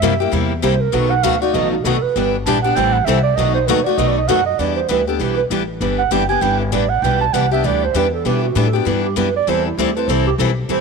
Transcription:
Already playing: E5
0.02 F#2 C3 G3 A#3 E4 G4
0.20 A#3 E4 G4
0.32 E2 C3 G3 A#3 E4 G4
0.62 C2 C3 G3 A#3 E4 G4 C5
0.81 A#4
0.92 B1 B2 D#3 F#3 A3 B3 D#4 F#4 A4 B4
1.10 F#5
1.23 D2 B2 D#3 F#3 A3 B3 D#4 F#4 A4 F5
1.41 A3 D#4 F#4 D5
1.54 A1 B2 D#3 F#3 A3 B3 D#4 F#4 A4 D#5
1.71 F#4
1.84 B1 B2 D#3 F#3 A3 B3 D#4 F#4 A4
2.02 B4, muted upright bass stroke
2.16 G1 E3 G3 B3 D4 E4 G4 B4
2.45 A#1 E3 G3 B3 D4 E4 G4 B4 A5
2.62 D4 G4 F#5
2.67 B3
2.75 A1 E3 G3 C4 E4 A4 G5
2.92 F#5
3.05 C2 E3 G3 C4 E4 E5
3.09 A4
3.23 D5
3.35 B1 B2 D#3 F#3 A3 B3 D#4 F#4 A4 D#5
3.55 C5
3.66 D#2 B2 D#3 F#3 A3 B3 D#4 F#4 A4 B4
3.84 D#4 F#4 D5, muted upright bass stroke
3.89 A3
3.97 B1 B2 D#3 F#3 A3 B3 D#4 F#4 A4 D#5
4.08 D5
4.19 D#5
4.28 F#2 B2 D#3 F#3 A3 B3 D#4 F#4 A4 F#5
4.46 D#5
4.58 E2 E3 G3 B3 D4 E4 G4 B4 D5
4.75 C5
4.88 D2 E3 G3 B3 D4 E4 G4 B4
5.07 B3 D4 G4 A4
5.19 B1 E3 G3 B3 D4 E4 G4 B4
5.37 B4
5.50 A1 E3 G3 B3 D4 E4 G4 B4
5.80 G1 E3 G3 B3 D4 E4 G4 B4
5.99 F#5
6.11 F#1 E3 G3 B3 D4 E4 G4 B4 G5
6.29 B3 D4 G4 G#5
6.41 G1 E3 G3 B3 D4 E4 G4 B4 G5
6.60 B4
6.72 A1 E3 G3 B3 D4 E4 G4 B4 D5
6.89 F#5
7.02 B1 E3 G3 B3 D4 E4 G4 B4 G5
7.21 A5
7.33 C2 E3 G3 B3 D4 E4 G4 B4 F#5
7.51 B3 D4 G4 E5
7.63 D2 E3 G3 B3 D4 E4 G4 B4 D5
7.84 C5
7.94 E2 E3 G3 B3 D4 E4 G4 B4
8.14 A4
8.25 B2 E3 G3 B3 D4 E4 G4 B4
8.43 F#4
8.55 A2 E3 G3 B3 D4 E4 G4 B4
8.66 A4
8.73 B3 D4 F#4 G4
8.85 G2 E3 G3 B3 D4 E4 G4 B4
9.04 G4
9.16 F#2 E3 G3 B3 D4 E4 G4 B4
9.36 D5
9.47 E2 E3 G3 C4 E4 A4 C5
9.66 E4
9.77 D2 E3 G3 C4 E4 G4 A4
9.96 C4 E4 A4 B4
10.08 C2 E3 G3 C4 E4 A4 C5
10.27 G4
10.38 B1 E3 G3 C4 E4 A4
10.69 A1 E3 G3 C4 E4 A4 C5

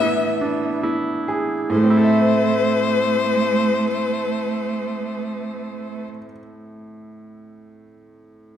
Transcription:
Already playing: A2 B3 G#4 E5
0.00 B3 E4
0.41 D4
0.83 E4
1.28 G#4
1.70 A2 A3 C5
1.76 A3
1.83 C4
1.90 E4
1.97 A4
2.04 E5

